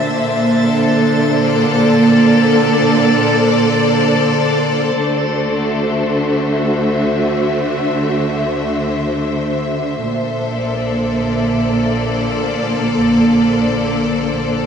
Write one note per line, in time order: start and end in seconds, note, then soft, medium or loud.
0.00 4.95 A#2 medium
0.00 4.95 D3 medium
0.00 4.95 D4 medium
0.00 14.66 C5 soft
0.00 1.43 E5 medium
0.00 4.97 A5 medium
0.00 4.97 A6 medium
0.05 4.96 A#3 medium
0.63 6.99 A4 medium
1.38 6.36 D5 medium
4.96 9.98 D2 medium
4.96 10.03 D3 medium
4.96 14.66 D3 medium
4.96 14.66 D4 medium
5.00 10.02 A3 medium
5.19 10.02 F#4 medium
5.62 12.05 E5 medium
10.02 14.66 A#1 medium
10.02 14.66 A#2 medium
10.15 14.66 A4 medium
10.48 14.66 A#3 medium
10.48 14.66 D5 medium